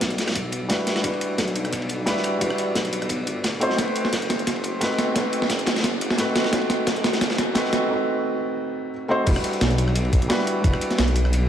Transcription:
Already playing: felt piano G3 D4 E4 F#4 B4
0.01 detuned saw bass B1, kick, snare, closed hi-hat, ride
0.10 closed hi-hat
0.18 snare, closed hi-hat, ride
0.27 cross-stick, snare, closed hi-hat, ride
0.31 snare, ride
0.35 kick, closed hi-hat, ride
0.52 closed hi-hat, ride
0.68 felt piano G3 D4 E4 F#4 B4, kick, snare, closed hi-hat, ride
0.87 snare, closed hi-hat, ride
0.96 snare, ride
1.01 detuned saw bass E1, felt piano G3 D4 E4, kick, closed hi-hat, ride
1.05 felt piano F#4 B4
1.14 ride
1.21 closed hi-hat, ride
1.38 detuned saw bass B1, kick, snare, closed hi-hat, ride
1.48 closed hi-hat
1.56 closed hi-hat, ride
1.65 cross-stick, closed hi-hat
1.73 kick, closed hi-hat, ride
1.82 ride
1.89 closed hi-hat, ride
2.06 felt piano G3 D4 E4 F#4 B4, kick, snare, closed hi-hat, ride
2.17 snare
2.23 cross-stick, closed hi-hat, ride
2.38 detuned saw bass E1, felt piano G3 D4 E4, kick, closed hi-hat, ride
2.43 felt piano F#4 B4
2.50 cross-stick
2.58 closed hi-hat, ride
2.75 detuned saw bass B1, kick, snare, closed hi-hat, ride
2.85 closed hi-hat
2.93 closed hi-hat, ride
3.02 cross-stick, closed hi-hat
3.09 kick, closed hi-hat, ride
3.27 detuned saw bass G1, closed hi-hat, ride
3.44 kick, snare, closed hi-hat, ride
3.60 felt piano A3 C4 D#4 F#4 C5, closed hi-hat, ride
3.70 detuned saw bass B1, snare
3.76 detuned saw bass B1, felt piano A3 C4 D#4, kick, snare, closed hi-hat, ride
3.80 felt piano F#4 B4
3.87 ride
3.96 closed hi-hat, ride
4.05 snare
4.13 detuned saw bass F#1, kick, snare, closed hi-hat, ride
4.22 closed hi-hat
4.30 snare, closed hi-hat, ride
4.39 closed hi-hat
4.47 kick, snare, closed hi-hat, ride
4.56 ride
4.63 closed hi-hat, ride
4.80 felt piano A3 C4 D#4 F#4 B4, kick, snare, closed hi-hat, ride
4.90 snare
4.98 snare, closed hi-hat, ride
5.13 detuned saw bass B1, felt piano A3 C4 D#4, kick, snare, closed hi-hat, ride
5.17 felt piano F#4 B4
5.33 closed hi-hat, ride
5.42 snare
5.49 detuned saw bass F#1, kick, snare, closed hi-hat, ride
5.59 closed hi-hat
5.66 snare, closed hi-hat, ride
5.76 snare, closed hi-hat, ride
5.80 snare, ride
5.84 kick, snare, closed hi-hat, ride
6.01 closed hi-hat, ride
6.11 snare
6.17 felt piano A3 C4 D#4 F#4 B4, kick, snare, closed hi-hat, ride
6.35 snare, closed hi-hat, ride
6.44 snare, ride
6.50 detuned saw bass B1, felt piano A3 C4 D#4, kick, snare, closed hi-hat, ride
6.54 felt piano F#4 B4
6.61 ride
6.70 snare, closed hi-hat, ride
6.87 detuned saw bass F#1, kick, snare, closed hi-hat, ride
6.96 closed hi-hat
7.04 snare, closed hi-hat, ride
7.13 snare, closed hi-hat, ride
7.21 kick, snare, closed hi-hat, ride
7.30 snare, ride
7.38 snare, closed hi-hat, ride
7.54 felt piano A3 C4 D#4 F#4 B4, kick, snare, closed hi-hat, ride
7.65 snare
7.73 snare, closed hi-hat, ride
7.87 felt piano A3 C4 D#4
7.91 felt piano F#4 B4
9.08 felt piano A3 C4 D#4 F#4 C5
9.24 detuned saw bass E1, felt piano G3 D4 E4, kick, closed hi-hat, crash, ride
9.28 felt piano F#4 B4
9.36 cross-stick, ride
9.44 closed hi-hat, ride
9.53 closed hi-hat
9.61 detuned saw bass B1, snare, closed hi-hat, ride
9.71 closed hi-hat
9.78 closed hi-hat, ride
9.88 cross-stick
9.96 closed hi-hat, ride
10.05 ride
10.13 kick, closed hi-hat, ride
10.22 closed hi-hat
10.28 felt piano G3 D4 E4 F#4 B4, snare, closed hi-hat, ride
10.39 snare
10.47 closed hi-hat, ride
10.61 detuned saw bass E1, felt piano G3 D4 E4, kick, closed hi-hat, ride
10.66 felt piano F#4 B4
10.74 cross-stick
10.81 closed hi-hat, ride
10.91 snare, closed hi-hat
10.98 detuned saw bass B1, snare, closed hi-hat, ride
11.08 closed hi-hat
11.15 closed hi-hat, ride
11.25 cross-stick
11.33 closed hi-hat, ride

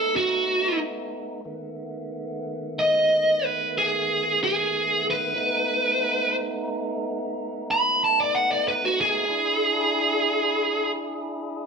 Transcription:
Already playing: tonewheel organ A3 B3 D#4, lead electric guitar A4
0.16 lead electric guitar F#4
1.45 tonewheel organ D#3 A3 B3
2.79 lead electric guitar D#5
3.44 lead electric guitar B4
3.78 lead electric guitar G#4
4.44 lead electric guitar G#4
5.10 lead electric guitar B4
5.35 tonewheel organ A3 B3 D#4
7.71 lead electric guitar B5
8.04 lead electric guitar A5
8.20 lead electric guitar D5
8.35 lead electric guitar F#5
8.51 lead electric guitar D5
8.68 lead electric guitar B4
8.85 lead electric guitar F#4
9.01 lead electric guitar G#4
9.28 tonewheel organ D4 E4 G#4

